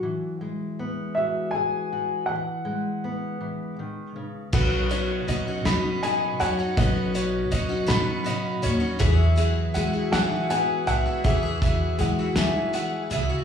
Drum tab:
CC |------|------|x-----|------|
HH |------|------|-xxxxx|xxxxxx|
SD |------|------|---o--|---o--|
BD |------|------|o-----|o-----|

CC |------|------|
HH |xxxxxx|xxxxxx|
SD |---o--|---o--|
BD |o-----|oo----|